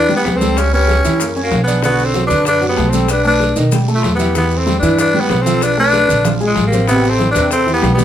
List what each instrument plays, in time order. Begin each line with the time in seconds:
Already playing: upright bass E2, tenor saxophone D4, flute B4
0.09 grand piano G3 G4, high bongo, high conga, maracas
0.15 tenor saxophone B3, flute G4
0.25 upright bass C#2, grand piano B3 B4, high bongo, low bongo, high conga, short guiro, maracas
0.36 tenor saxophone C4, flute A4
0.41 grand piano G3 G4, high bongo, high conga, short guiro, maracas
0.57 tenor saxophone C#4, flute G4, high bongo, high conga, long guiro, maracas
0.73 grand piano B3 B4, tenor saxophone C#4, flute G4, high conga, maracas
0.88 high bongo, high conga, short guiro, maracas
1.04 upright bass F#2, grand piano E3 E4, high bongo, high conga, short guiro, maracas
1.20 grand piano A#3 A#4, high bongo, high conga, long guiro, maracas
1.35 grand piano C#4 C#5, high bongo, high conga, maracas
1.42 tenor saxophone A#3, flute F#4
1.51 upright bass B1, high bongo, low bongo, high conga, short guiro, maracas
1.62 tenor saxophone B3, flute G#4
1.67 grand piano D4 D5, high bongo, high conga, short guiro, maracas
1.82 grand piano D3 D4, tenor saxophone B3, flute F#4, high bongo, long guiro, maracas
1.99 high bongo, high conga, maracas
2.04 tenor saxophone C4, flute A4
2.14 grand piano F#3 F#4, high bongo, high conga, short guiro, maracas
2.25 tenor saxophone D4, flute B4
2.29 upright bass F#2, grand piano D3 D4, short guiro, maracas
2.45 tenor saxophone D4, flute B4, high bongo, high conga, long guiro, maracas
2.61 grand piano F#3 F#4, high conga, maracas
2.67 tenor saxophone B3, flute G4
2.77 upright bass B1, grand piano A3 A4, high bongo, low bongo, high conga, short guiro, maracas
2.89 grand piano G3, tenor saxophone C4, flute A4, high bongo, maracas
2.93 grand piano G4, high conga, short guiro
3.08 tenor saxophone D4, flute B4, high bongo, long guiro, maracas
3.25 grand piano A3 A4, tenor saxophone D4, flute B4, maracas
3.40 high bongo, high conga, short guiro, maracas
3.56 upright bass B2, grand piano D#3 D#4, high bongo, short guiro, maracas
3.72 grand piano G3 G4, high bongo, high conga, long guiro, maracas
3.88 grand piano A3 A4, high bongo, high conga, maracas
3.94 tenor saxophone A3, flute F4
4.03 upright bass E2, high bongo, low bongo, high conga, short guiro, maracas
4.15 tenor saxophone B3, flute G4
4.19 grand piano E4 E5, high bongo, high conga, short guiro, maracas
4.35 grand piano E3 E4, tenor saxophone B3, flute G4, high bongo, high conga, long guiro, maracas
4.51 high bongo, high conga, maracas
4.57 tenor saxophone C4, flute A4
4.66 grand piano G3 G4, high bongo, high conga, short guiro, maracas
4.79 upright bass G2, grand piano E3, tenor saxophone D4, flute B4
4.83 grand piano E4, high conga, short guiro, maracas
4.98 tenor saxophone D4, flute B4, high bongo, high conga, long guiro, maracas
5.14 grand piano G3 G4, high conga, maracas
5.21 tenor saxophone B3, flute G4
5.30 upright bass B1, grand piano B3 B4, high bongo, low bongo, high conga, short guiro, maracas
5.41 tenor saxophone C4, flute A4
5.46 grand piano F3 F4, high bongo, short guiro, maracas
5.61 tenor saxophone D4, flute B4, high bongo, high conga, long guiro, maracas
5.77 grand piano A3 A4, tenor saxophone D4, flute B4, high conga, maracas
5.93 high bongo, high conga, short guiro, maracas
6.08 upright bass A#1, grand piano D3 D4, high bongo, high conga, short guiro, maracas
6.25 grand piano F3 F4, high bongo, long guiro, maracas
6.40 grand piano G#3 G#4, high bongo, high conga, maracas
6.45 tenor saxophone G#3, flute F4
6.55 upright bass A1, high bongo, low bongo, high conga, short guiro, maracas
6.67 tenor saxophone A#3, flute G4, high conga
6.72 grand piano C4 C5, high bongo, short guiro, maracas
6.87 grand piano C3 C4, tenor saxophone B3, flute G4, high bongo, high conga, long guiro, maracas
7.03 high bongo, high conga, maracas
7.09 tenor saxophone C4, flute A4
7.19 grand piano E3 E4, high bongo, high conga, short guiro, maracas
7.30 tenor saxophone D4, flute B4
7.35 upright bass E2, grand piano C3 C4, high conga, short guiro, maracas
7.51 tenor saxophone C4, flute A4, high bongo, high conga, long guiro, maracas
7.66 grand piano E3 E4, high conga, maracas
7.71 tenor saxophone B3, flute G4
7.82 upright bass B1, grand piano G3 G4, high bongo, low bongo, high conga, short guiro, maracas
7.93 tenor saxophone B3, flute G4
7.98 grand piano G3 G4, high conga, short guiro, maracas